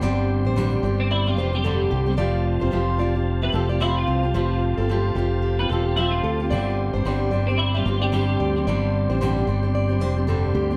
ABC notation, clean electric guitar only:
X:1
M:4/4
L:1/16
Q:"Swing 16ths" 1/4=111
K:Gmix
V:1 name="Clean electric guitar"
z6 z C E F2 G4- G- | G z8 B A G E F3- | F3 z6 B A G E F3- | F3 z4 C E F2 G4- G- |
G z12 z3 |]